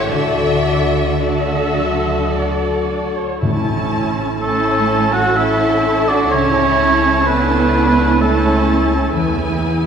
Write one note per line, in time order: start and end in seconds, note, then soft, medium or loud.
0.00 0.14 A2 medium
0.00 0.14 C#4 soft
0.00 0.14 G4 soft
0.00 2.33 A4 soft
0.09 3.22 D2 soft
0.09 3.47 D3 soft
0.09 3.22 D3 soft
0.09 1.19 F#4 soft
0.09 1.20 A4 soft
0.09 1.10 D5 medium
0.09 1.19 E5 medium
0.66 3.47 F#4 soft
1.21 2.89 D4 soft
1.21 3.18 F#4 soft
1.21 3.18 A4 soft
1.21 2.34 D5 soft
1.21 2.30 E5 medium
1.78 3.47 F#3 soft
2.33 4.39 A4 soft
2.33 3.17 D5 soft
2.90 3.47 D4 soft
3.17 3.43 C#5 soft
3.42 6.28 A1 soft
3.42 4.84 A2 medium
3.42 6.36 A2 soft
3.42 4.36 C#4 soft
3.42 4.36 E4 soft
3.42 4.37 A5 soft
3.93 6.78 A3 soft
4.40 5.08 A3 medium
4.40 5.34 C#4 medium
4.40 5.08 C#4 medium
4.40 5.34 E4 medium
4.40 5.83 A4 soft
4.40 5.14 A4 medium
4.40 5.34 A5 soft
4.89 8.79 C#4 soft
5.11 5.36 F#4 medium
5.11 5.34 A4 medium
5.11 5.38 F#5 medium
5.35 6.30 C#4 soft
5.35 6.08 E4 medium
5.35 6.30 E4 soft
5.35 6.06 A4 medium
5.35 9.18 C#5 soft
5.35 6.10 E5 medium
5.35 6.30 A5 soft
5.85 7.25 A4 soft
6.07 6.32 D4 medium
6.07 6.32 F#4 medium
6.07 6.30 D5 medium
6.30 9.10 C#2 soft
6.30 9.19 C#3 soft
6.30 8.18 C#4 soft
6.30 7.27 C#4 medium
6.30 7.26 E4 medium
6.30 8.18 E4 medium
6.30 7.28 C#5 medium
6.30 8.17 A5 soft
6.80 9.18 A3 soft
7.26 8.21 B3 medium
7.26 8.19 D4 medium
7.26 8.66 A4 soft
7.26 8.20 B4 medium
7.74 9.60 E4 soft
8.20 9.13 A3 medium
8.20 9.14 C#4 medium
8.20 9.13 C#4 medium
8.20 9.13 E4 medium
8.20 9.13 A4 medium
8.20 9.86 E5 soft
8.20 9.13 A5 soft
8.67 9.18 A4 soft
9.14 9.86 E2 soft
9.14 9.86 E3 soft
9.14 9.86 B3 soft
9.14 9.86 E4 soft
9.14 9.86 G#5 soft
9.61 9.86 E4 soft